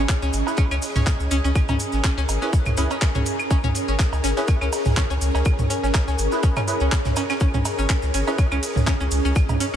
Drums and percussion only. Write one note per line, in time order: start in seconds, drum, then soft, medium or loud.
0.09 kick loud
0.09 snare loud
0.09 clap medium
0.09 closed hi-hat medium
0.09 cabasa medium
0.22 closed hi-hat soft
0.22 cabasa soft
0.33 closed hi-hat medium
0.33 open hi-hat loud
0.33 cabasa medium
0.47 snare soft
0.47 cowbell medium
0.47 cabasa soft
0.57 kick loud
0.57 closed hi-hat medium
0.57 cabasa medium
0.57 claves medium
0.71 cabasa soft
0.71 claves medium
0.82 open hi-hat medium
0.82 cabasa loud
0.95 mid tom medium
0.95 cabasa soft
1.07 kick loud
1.07 snare loud
1.07 clap medium
1.07 closed hi-hat medium
1.07 cowbell medium
1.07 cabasa medium
1.20 cabasa soft
1.31 closed hi-hat medium
1.31 open hi-hat medium
1.31 cabasa medium
1.45 cabasa soft
1.55 kick loud
1.55 closed hi-hat medium
1.55 cabasa soft
1.55 claves medium
1.68 mid tom medium
1.68 cowbell medium
1.68 cabasa soft
1.79 closed hi-hat medium
1.79 open hi-hat medium
1.79 cabasa medium
1.92 snare soft
1.92 cabasa soft
2.04 kick loud
2.04 snare loud
2.04 clap medium
2.04 closed hi-hat medium
2.04 cabasa medium
2.17 snare soft
2.17 cabasa soft
2.29 closed hi-hat medium
2.29 open hi-hat medium
2.29 cowbell medium
2.29 cabasa medium
2.42 snare medium
2.42 cabasa soft
2.53 kick loud
2.53 closed hi-hat medium
2.53 cabasa medium
2.65 closed hi-hat soft
2.65 mid tom medium
2.65 cabasa soft
2.65 claves medium
2.77 snare soft
2.77 closed hi-hat medium
2.77 open hi-hat medium
2.77 cabasa medium
2.90 closed hi-hat soft
2.90 cowbell medium
2.90 cabasa soft
3.01 kick loud
3.01 snare loud
3.01 clap medium
3.01 closed hi-hat medium
3.01 cabasa soft
3.15 mid tom medium
3.15 cabasa soft
3.26 closed hi-hat medium
3.26 open hi-hat medium
3.26 cabasa medium
3.39 cabasa soft
3.39 claves medium
3.50 kick loud
3.50 closed hi-hat medium
3.50 cowbell medium
3.50 cabasa medium
3.64 mid tom medium
3.64 cabasa soft
3.75 closed hi-hat medium
3.75 open hi-hat medium
3.75 cabasa medium
3.88 cabasa soft
3.99 kick loud
3.99 snare loud
3.99 clap medium
3.99 closed hi-hat medium
3.99 cabasa medium
4.13 closed hi-hat soft
4.13 cowbell medium
4.13 cabasa soft
4.24 snare medium
4.24 closed hi-hat medium
4.24 open hi-hat medium
4.24 cabasa medium
4.37 snare loud
4.37 closed hi-hat medium
4.37 cabasa soft
4.47 kick loud
4.47 closed hi-hat medium
4.47 cabasa medium
4.47 claves medium
4.61 cabasa soft
4.61 claves medium
4.72 open hi-hat medium
4.72 cowbell medium
4.72 cabasa medium
4.85 mid tom medium
4.85 cabasa soft
4.97 kick loud
4.97 snare loud
4.97 clap medium
4.97 cabasa medium
5.10 cabasa soft
5.21 closed hi-hat medium
5.21 open hi-hat medium
5.21 cabasa medium
5.35 cowbell medium
5.35 cabasa soft
5.45 kick loud
5.45 closed hi-hat medium
5.45 cabasa soft
5.45 claves medium
5.59 mid tom medium
5.59 cabasa soft
5.70 closed hi-hat medium
5.70 open hi-hat medium
5.70 cabasa medium
5.83 snare soft
5.83 cabasa soft
5.95 kick loud
5.95 snare loud
5.95 clap loud
5.95 closed hi-hat medium
5.95 cowbell medium
5.95 cabasa medium
6.08 snare soft
6.08 cabasa soft
6.18 closed hi-hat medium
6.18 open hi-hat medium
6.18 cabasa medium
6.32 snare medium
6.32 cabasa soft
6.43 kick loud
6.43 closed hi-hat medium
6.43 cabasa medium
6.56 closed hi-hat soft
6.56 mid tom medium
6.56 cowbell medium
6.56 cabasa soft
6.56 claves medium
6.68 snare soft
6.68 closed hi-hat medium
6.68 open hi-hat medium
6.68 cabasa medium
6.80 closed hi-hat soft
6.80 cabasa soft
6.91 kick loud
6.91 snare loud
6.91 clap medium
6.91 closed hi-hat medium
6.91 cabasa soft
7.05 snare loud
7.05 closed hi-hat medium
7.05 mid tom medium
7.05 cabasa soft
7.16 snare loud
7.16 closed hi-hat medium
7.16 open hi-hat medium
7.16 cowbell medium
7.16 cabasa loud
7.29 snare loud
7.29 closed hi-hat medium
7.29 cabasa soft
7.29 claves medium
7.40 kick loud
7.40 closed hi-hat medium
7.40 cabasa medium
7.54 mid tom medium
7.54 cabasa soft
7.65 closed hi-hat medium
7.65 open hi-hat medium
7.65 ride medium
7.65 cowbell medium
7.65 cabasa medium
7.78 cabasa soft
7.89 kick loud
7.89 snare loud
7.89 clap loud
7.89 closed hi-hat medium
7.89 cabasa medium
8.02 closed hi-hat soft
8.02 cabasa soft
8.14 closed hi-hat medium
8.14 open hi-hat medium
8.14 ride medium
8.14 cabasa loud
8.27 snare soft
8.27 cowbell medium
8.27 cabasa soft
8.38 kick loud
8.38 closed hi-hat medium
8.38 cabasa medium
8.38 claves medium
8.52 cabasa soft
8.52 claves medium
8.63 open hi-hat medium
8.63 ride medium
8.63 cabasa loud
8.76 mid tom medium
8.76 cabasa soft
8.87 kick loud
8.87 snare loud
8.87 clap loud
8.87 closed hi-hat medium
8.87 cowbell medium
8.87 cabasa medium
9.01 cabasa soft
9.11 closed hi-hat medium
9.11 open hi-hat medium
9.11 ride medium
9.11 cabasa medium
9.25 cabasa soft
9.35 kick loud
9.35 closed hi-hat medium
9.35 cabasa medium
9.35 claves medium
9.49 mid tom medium
9.49 cowbell medium
9.49 cabasa soft
9.60 closed hi-hat medium
9.60 open hi-hat loud
9.60 ride medium
9.60 cabasa loud